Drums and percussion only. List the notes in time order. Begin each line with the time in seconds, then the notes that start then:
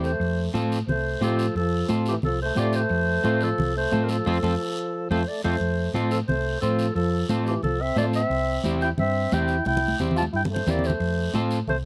0.04 short guiro
0.21 high conga, long guiro
0.55 high conga, short guiro
0.72 short guiro
0.89 high conga, low conga, long guiro
1.22 high conga, short guiro
1.39 short guiro
1.56 high conga, long guiro
1.89 high conga, short guiro
2.06 short guiro
2.22 high conga, low conga, long guiro
2.56 high conga, short guiro
2.73 short guiro
2.89 high conga, long guiro
3.24 high conga, short guiro
3.41 short guiro
3.58 high conga, low conga, long guiro
3.91 high conga, short guiro
4.09 short guiro
4.25 high conga, long guiro
4.43 high conga, long guiro
5.11 high conga, long guiro
5.44 high conga, long guiro
5.62 long guiro
5.95 high conga, short guiro
6.11 short guiro
6.28 high conga, low conga, long guiro
6.62 high conga, short guiro
6.79 short guiro
6.96 high conga, long guiro
7.29 high conga, short guiro
7.47 short guiro
7.63 high conga, low conga, long guiro
7.96 high conga, short guiro
8.13 short guiro
8.30 high conga, long guiro
8.64 high conga, short guiro
8.81 short guiro
8.98 high conga, low conga, long guiro
9.31 high conga, short guiro
9.48 short guiro
9.65 high conga, long guiro
9.77 high conga
9.88 high conga
9.99 low conga, short guiro
10.11 low conga
10.17 short guiro
10.23 high conga
10.34 long guiro
10.45 low conga
10.56 low conga
10.67 low conga, short guiro
10.79 low conga
10.84 short guiro
10.90 low conga
11.00 high conga, long guiro
11.34 high conga, short guiro
11.51 short guiro
11.67 high conga, low conga, long guiro